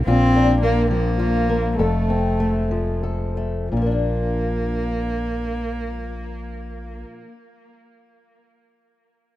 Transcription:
0.06 fingered electric bass A#1, steel-string acoustic guitar A#2 F4, cello C4
0.36 steel-string acoustic guitar D4
0.62 cello A#3, steel-string acoustic guitar A#3
0.91 steel-string acoustic guitar F3, cello A#3
1.19 steel-string acoustic guitar F4
1.49 steel-string acoustic guitar A#3
1.79 fingered electric bass F1, steel-string acoustic guitar F2 A4, cello A3
2.10 steel-string acoustic guitar C4
2.40 steel-string acoustic guitar A3
2.71 steel-string acoustic guitar F3
3.03 steel-string acoustic guitar A4
3.37 steel-string acoustic guitar A3
3.72 fingered electric bass A#1, steel-string acoustic guitar A#2, cello A#3
3.77 steel-string acoustic guitar F3
3.82 steel-string acoustic guitar A#3
3.86 steel-string acoustic guitar D4
3.92 steel-string acoustic guitar F4

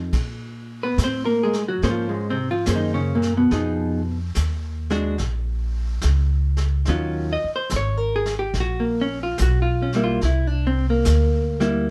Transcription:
Already playing: hollow-body jazz guitar F3 C4 D#4 A4
0.13 upright bass A#2, brush sweep, kick, snare, ride
0.83 hollow-body jazz guitar B3 B4
0.98 upright bass A2, snare, hi-hat pedal
1.04 hollow-body jazz guitar C4 C5
1.25 hollow-body jazz guitar A#3 A#4
1.43 hollow-body jazz guitar G#3 G#4
1.53 snare
1.68 hollow-body jazz guitar F#3 F#4
1.82 upright bass G#2, hollow-body jazz guitar A#3 C#4 G#4 C5, brush sweep, snare
1.90 hollow-body jazz guitar F3 F4
2.09 hollow-body jazz guitar G#2 G#3
2.30 hollow-body jazz guitar C3 C4
2.51 hollow-body jazz guitar F3 F4
2.66 upright bass F#2, hollow-body jazz guitar A#3 C#4 G#4 C5, snare, hi-hat pedal
2.75 hollow-body jazz guitar D#3 D#4
2.94 hollow-body jazz guitar C#3 C#4
3.15 hollow-body jazz guitar A#2 A#3
3.22 snare
3.37 hollow-body jazz guitar B2 B3
3.51 upright bass F2, hollow-body jazz guitar F3 B3 D#4 G#4, brush sweep, snare
4.35 upright bass D#2, snare, hi-hat pedal
4.90 hollow-body jazz guitar G#3 D4 F#4, snare
5.18 upright bass A#1, brush sweep, snare
6.01 upright bass C#2, snare, hi-hat pedal
6.57 snare
6.85 upright bass D#2, hollow-body jazz guitar D#3 F#3 C#4, brush sweep, snare
6.90 hollow-body jazz guitar F4
7.33 hollow-body jazz guitar D#5
7.44 muted upright bass stroke
7.56 hollow-body jazz guitar C5
7.70 upright bass G#1, snare, hi-hat pedal
7.76 hollow-body jazz guitar C#5
7.98 hollow-body jazz guitar A#4
8.16 hollow-body jazz guitar G#4
8.26 snare
8.39 hollow-body jazz guitar G4
8.54 upright bass A#1, brush sweep, snare
8.60 hollow-body jazz guitar F#4
8.80 hollow-body jazz guitar A#3
9.01 hollow-body jazz guitar C#4
9.23 hollow-body jazz guitar F4
9.38 upright bass B1, snare, hi-hat pedal
9.42 hollow-body jazz guitar F#4
9.62 hollow-body jazz guitar F4
9.82 hollow-body jazz guitar C#4
9.92 hollow-body jazz guitar G3 A#3 E4, snare
10.04 hollow-body jazz guitar F4
10.21 upright bass C2, hollow-body jazz guitar E4, brush sweep, snare
10.47 hollow-body jazz guitar D4
10.67 hollow-body jazz guitar C4
10.90 hollow-body jazz guitar A#3
11.05 upright bass D2, snare, hi-hat pedal
11.60 hollow-body jazz guitar G3 A#3 E4, snare

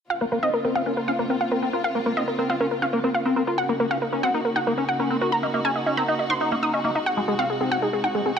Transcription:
0.10 string section C#3 A#3 C4 F4, synth pluck F5
0.21 acid bass A#3, synth pluck A#4
0.32 acid bass A#3, synth pluck A#4
0.43 acid bass C4, synth pluck D#5
0.54 synth pluck A#4
0.65 acid bass C4, synth pluck A#4
0.76 acid bass C4, synth pluck F5
0.86 acid bass C#4, synth pluck A#4
0.97 synth pluck A#4
1.08 acid bass C#4, synth pluck F5
1.19 acid bass A#3, synth pluck A#4
1.30 acid bass C4, synth pluck A#4
1.41 synth pluck F5
1.52 acid bass C4, synth pluck A#4
1.62 acid bass C4, synth pluck A#4
1.73 acid bass F4, synth pluck A#4
1.84 synth pluck F5
1.95 acid bass A#3, synth pluck A#4
2.06 acid bass A#3, synth pluck A#4
2.17 acid bass C4, synth pluck D#5
2.28 synth pluck A#4
2.39 acid bass C4, synth pluck A#4
2.50 acid bass C4, synth pluck F5
2.60 acid bass C#4, synth pluck A#4
2.71 synth pluck A#4
2.82 acid bass C#4, synth pluck F5
2.93 acid bass A#3, synth pluck A#4
3.04 acid bass C4, synth pluck A#4
3.14 synth pluck F5
3.25 acid bass C4, synth pluck A#4
3.36 acid bass C4, synth pluck A#4
3.47 acid bass F4, synth pluck A#4
3.58 string section A#3 D#4 F#4, synth pluck F#5
3.69 acid bass A#3, synth pluck A#4
3.80 acid bass A#3, synth pluck A#4
3.91 acid bass C#4, synth pluck F5
4.02 synth pluck A#4
4.12 acid bass C#4, synth pluck A#4
4.23 acid bass C4, synth pluck F#5
4.34 acid bass D#4, synth pluck A#4
4.45 synth pluck A#4
4.56 acid bass D#4, synth pluck F#5
4.67 acid bass A#3, synth pluck A#4
4.78 acid bass C#4, synth pluck A#4
4.89 synth pluck F#5
4.99 acid bass C#4, synth pluck A#4
5.10 acid bass C4, synth pluck A#4
5.21 acid bass F#4, synth pluck A#4
5.32 synth pluck A#5
5.43 acid bass A#3, synth pluck D#5
5.54 acid bass A#3, synth pluck D#5
5.65 acid bass C#4, synth pluck G#5
5.76 synth pluck D#5
5.86 acid bass C#4, synth pluck D#5
5.97 acid bass C4, synth pluck A#5
6.08 acid bass D#4, synth pluck D#5
6.19 synth pluck D#5
6.30 acid bass D#4, synth pluck C6
6.41 acid bass D#4, synth pluck D#5
6.52 acid bass A#3, synth pluck D#5
6.63 acid bass D#4, synth pluck D#6
6.73 acid bass C#4, synth pluck D#5
6.84 acid bass A#3, synth pluck D#5
6.95 acid bass D#4, synth pluck D#5
7.06 string section C3 G#3, synth pluck F#5
7.17 acid bass G#3, synth pluck G#4
7.28 acid bass G#3, synth pluck G#4
7.39 acid bass C4, synth pluck F5
7.50 synth pluck G#4
7.60 acid bass C4, synth pluck G#4
7.71 acid bass C4, synth pluck F#5
7.82 acid bass D#4, synth pluck G#4
7.93 synth pluck G#4
8.04 acid bass D#4, synth pluck F#5
8.15 acid bass G#3, synth pluck G#4
8.26 acid bass C4, synth pluck G#4

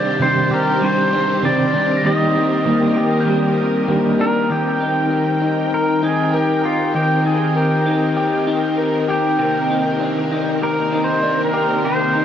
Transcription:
Already playing: clean electric guitar C3 G3 C4 D4 G4, string machine D#3 C4 G4 C5, pedal steel guitar D5, glockenspiel G6
0.19 clean electric guitar C3 D#3 G3 C4 D4 G4, pedal steel guitar C5
0.49 clean electric guitar C4 D4 G4
0.54 clean electric guitar G3, pedal steel guitar A#4
0.80 clean electric guitar G3 C4 D4
0.84 clean electric guitar G4, pedal steel guitar C5
1.11 clean electric guitar C4 D4 G4
1.16 clean electric guitar G3
1.42 clean electric guitar C3 D#3 G3 C4 D4 G4, pedal steel guitar D5
1.72 clean electric guitar C4 D4 G4
1.77 clean electric guitar G3
1.97 glockenspiel A#6
2.03 clean electric guitar D#3 G3 A#3 G4, string machine D#3 A#4, pedal steel guitar D#5
2.34 clean electric guitar D4 G4
2.39 clean electric guitar A#3
2.65 clean electric guitar D#3 G3 A#3 G4
2.95 clean electric guitar G4
3.00 clean electric guitar A#3
3.20 glockenspiel G6
3.25 clean electric guitar G3 A#3
3.30 clean electric guitar G4
3.56 clean electric guitar G4
3.61 clean electric guitar A#3
3.88 clean electric guitar D#3 G3 A#3 D4 G4
4.18 clean electric guitar D4 G4, pedal steel guitar A#4
4.23 clean electric guitar A#3
4.49 string machine D#3 C4 A#4 G5, clean electric guitar D#3 G4, pedal steel guitar G4
4.80 clean electric guitar D#4
5.11 clean electric guitar A#4
5.42 clean electric guitar D#4
5.74 pedal steel guitar A#4
6.02 clean electric guitar D#4, pedal steel guitar G#4
6.34 pedal steel guitar G4, clean electric guitar A#4
6.64 pedal steel guitar F4, clean electric guitar G4
6.94 clean electric guitar D#3, pedal steel guitar G4
7.25 clean electric guitar D#4, pedal steel guitar G#4
7.55 pedal steel guitar G4, clean electric guitar A#4
7.86 clean electric guitar D#4
8.17 clean electric guitar G4
8.47 clean electric guitar D#4
8.78 clean electric guitar A#4
9.08 clean electric guitar G4, pedal steel guitar G4
9.39 clean electric guitar C3 G4, string machine A#3
9.70 clean electric guitar D#4
10.01 clean electric guitar D4
10.31 clean electric guitar D#4
10.62 clean electric guitar G4, pedal steel guitar A#4
10.92 clean electric guitar D#4
11.04 pedal steel guitar C5
11.23 clean electric guitar D4
11.45 pedal steel guitar A#4
11.54 clean electric guitar G4
11.84 clean electric guitar C3 G4, pedal steel guitar C5
12.15 clean electric guitar D#4

